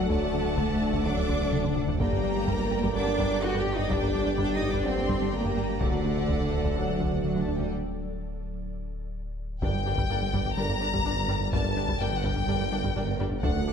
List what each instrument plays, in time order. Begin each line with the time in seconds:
Already playing: sub bass D1, double bass section D2, tuba D2, ambient pad F#3 D4 A4 D5, french horn section F#4, viola section A4 D5, violin section F#5
0.09 analog synth bass D2, synth arpeggio sound D3, trombone section D3 F#3, cello section A3, violin section A5, taiko
0.22 analog synth bass D2, synth arpeggio sound F#3
0.34 analog synth bass D3, synth arpeggio sound A3
0.46 analog synth bass D3, synth arpeggio sound A3
0.57 analog synth bass D2, synth arpeggio sound D3, french horn section D4, taiko
0.69 analog synth bass D3
0.81 analog synth bass D2, synth arpeggio sound D4
0.93 analog synth bass D2, synth arpeggio sound D3, taiko
1.05 analog synth bass D3, trombone section D3 F#3, synth arpeggio sound A3, cello section D4, french horn section F#4, violin section D6
1.17 analog synth bass D2, synth arpeggio sound F#3
1.29 analog synth bass D2, synth arpeggio sound D3, taiko
1.41 analog synth bass D3, synth arpeggio sound A3
1.52 analog synth bass D3, french horn section A4, taiko mid
1.64 analog synth bass D2, synth arpeggio sound D3, taiko low-mid
1.76 analog synth bass D2, synth arpeggio sound D4, taiko mid
1.88 analog synth bass D2, synth arpeggio sound D4, taiko low
1.99 sub bass G1, tuba G1, double bass section G2, analog synth bass G2, trombone section D3 G3, synth arpeggio sound G3, ambient pad G3 D4 G4 D5, cello section A#3, french horn section G4, viola section G4 D5, violin section G5 A#5, taiko
2.12 analog synth bass G2, synth arpeggio sound A#3
2.24 analog synth bass G3, synth arpeggio sound D4
2.36 analog synth bass G3, synth arpeggio sound D4
2.47 analog synth bass G2, synth arpeggio sound G3, french horn section A#4, taiko
2.60 analog synth bass G3
2.71 analog synth bass G2, synth arpeggio sound G4
2.83 analog synth bass G2, synth arpeggio sound G3, taiko
2.95 trombone section D3 G3, analog synth bass G3, synth arpeggio sound D4, cello section D4, violin section D6
3.07 analog synth bass G2, synth arpeggio sound A#3
3.19 analog synth bass G2, synth arpeggio sound G3, taiko
3.31 analog synth bass G3, synth arpeggio sound D4
3.42 analog synth bass G3, cello section F#4, french horn section A4, violin section F#6
3.55 analog synth bass G2, synth arpeggio sound G3, violin section G6
3.59 cello section G4
3.67 analog synth bass G2, synth arpeggio sound G4
3.75 analog synth bass G2, cello section D#4, synth arpeggio sound G4, violin section D#6
3.90 analog synth bass G2, trombone section D3 G3, synth arpeggio sound G3, cello section D4, french horn section G4, violin section D6, taiko
4.02 analog synth bass G2, synth arpeggio sound A#3
4.14 analog synth bass G3, synth arpeggio sound D4
4.26 analog synth bass G3, synth arpeggio sound D4
4.37 analog synth bass G2, synth arpeggio sound G3, cello section D4, french horn section G4, violin section D6, taiko
4.50 analog synth bass G3, violin section D#6
4.54 cello section D#4
4.62 analog synth bass G2, synth arpeggio sound G4
4.70 cello section D4, violin section D6, taiko
4.74 analog synth bass G2, synth arpeggio sound G3
4.85 trombone section D3 G3, analog synth bass G3, cello section C4, synth arpeggio sound D4, violin section C6
4.97 analog synth bass G2, synth arpeggio sound A#3
5.09 analog synth bass G2, synth arpeggio sound G3, taiko
5.21 analog synth bass G3, synth arpeggio sound D4
5.33 analog synth bass G3, cello section A#3, french horn section A#4, violin section A#5
5.45 analog synth bass G2, synth arpeggio sound G3
5.57 analog synth bass G2, synth arpeggio sound G4
5.69 analog synth bass G2, synth arpeggio sound G4
5.80 sub bass D1, analog synth bass D2, tuba D2, double bass section D2, synth arpeggio sound D3, cello section D3, trombone section D3 F#3, ambient pad F#3 D4 A4 D5, french horn section F#4, viola section A4 D5, violin section D5 F#5, taiko
5.93 analog synth bass D2, synth arpeggio sound F#3
6.05 analog synth bass D3, synth arpeggio sound A3
6.17 analog synth bass D3, synth arpeggio sound A3
6.28 analog synth bass D2, synth arpeggio sound D3, french horn section A4, taiko
6.41 analog synth bass D3
6.53 analog synth bass D2, synth arpeggio sound D4
6.64 analog synth bass D2, synth arpeggio sound D3, taiko
6.76 trombone section D3 F#3, analog synth bass D3, cello section F#3, synth arpeggio sound A3, french horn section F#4, violin section F#5
6.88 analog synth bass D2, synth arpeggio sound F#3
7.00 analog synth bass D2, synth arpeggio sound D3, taiko
7.13 analog synth bass D3, synth arpeggio sound A3
7.24 analog synth bass D3, cello section F#3, violin section F#5
7.36 analog synth bass D2, synth arpeggio sound D3
7.40 cello section A3, violin section A5
7.48 analog synth bass D2, synth arpeggio sound D4
7.56 cello section G3, synth arpeggio sound D4, violin section G5
7.60 analog synth bass D2
9.62 sub bass G1, double bass section G1, tuba G1, analog synth bass G2, cello section G2, trombone section D3 G3, synth arpeggio sound G3, viola section G3 D4, ambient pad G3 D4 A#4 D5, french horn section D4 A#4, violin section A#4 D5 G5, taiko
9.75 analog synth bass G3
9.86 analog synth bass G2, viola section G3 D4, synth arpeggio sound G4, violin section A#4 D5
9.98 analog synth bass G2, synth arpeggio sound G3, taiko
10.10 tuba G1, double bass section G1, analog synth bass G2, cello section G2, viola section G3 D4, synth arpeggio sound A#3, violin section A#4 D5
10.22 analog synth bass G3
10.34 analog synth bass G2, synth arpeggio sound G3, viola section G3 D4, violin section A#4 D5, taiko
10.46 analog synth bass G2, synth arpeggio sound G4
10.57 tuba G1, double bass section G1, analog synth bass G2, cello section G2, trombone section D3 G3, synth arpeggio sound G3, viola section G3 D4, french horn section D4 A#4, violin section A#4 D5 A#5
10.69 analog synth bass G2, synth arpeggio sound A#3
10.81 analog synth bass G3, viola section G3 D4, synth arpeggio sound D4, violin section A#4 D5
10.93 analog synth bass G2, synth arpeggio sound G3, taiko
11.04 tuba G1, double bass section G1, cello section G2, analog synth bass G3, viola section G3 D4, synth arpeggio sound D4, violin section A#4 D5
11.16 analog synth bass G2
11.28 analog synth bass G2, synth arpeggio sound G3, viola section G3 D4, violin section A#4 D5
11.40 analog synth bass G2
11.52 tuba G1, double bass section G1, analog synth bass G2, cello section G2, trombone section D3 G3, synth arpeggio sound G3, viola section G3 D4, french horn section D4 A#4, violin section A#4 D5 A5, taiko
11.64 analog synth bass G3, taiko low-mid
11.76 analog synth bass G2, viola section G3 D4, synth arpeggio sound G4, violin section A#4 D5
11.88 analog synth bass G2, synth arpeggio sound G3, taiko
12.00 double bass section G1, tuba G1, analog synth bass G2, cello section G2, viola section G3 D4, synth arpeggio sound A#3, violin section A#4 D5 G5
12.12 analog synth bass G3, taiko low-mid
12.17 violin section F#5
12.24 analog synth bass G2, synth arpeggio sound G3, viola section G3 D4, violin section A#4 D5 G5, taiko
12.36 analog synth bass G2, synth arpeggio sound G4
12.48 double bass section G1, tuba G1, analog synth bass G2, cello section G2, trombone section D3 G3, viola section G3 D4, synth arpeggio sound G3, french horn section D4 A#4, violin section A#4 D5
12.60 analog synth bass G2, synth arpeggio sound A#3
12.72 viola section G3 D4, analog synth bass G3, synth arpeggio sound D4, violin section A#4 D5
12.84 analog synth bass G2, synth arpeggio sound G3, taiko
12.95 double bass section G1, tuba G1, cello section G2, viola section G3 D4, analog synth bass G3, synth arpeggio sound D4, violin section A#4 D5, taiko low-mid
13.08 analog synth bass G2, taiko low-mid
13.19 analog synth bass G2, viola section G3 D4, synth arpeggio sound G3, violin section A#4 D5
13.31 analog synth bass G2, taiko low-mid
13.43 sub bass D1, tuba D2, analog synth bass D2, double bass section D2, cello section D2, trombone section D3 A3, synth arpeggio sound D3, viola section A3 D4, ambient pad A3 D4 A4 D5, french horn section D4 A4, violin section A4 D5 F#5, taiko
13.55 analog synth bass D3, taiko low-mid
13.67 analog synth bass D2, viola section A3 D4, synth arpeggio sound D4, violin section A4 D5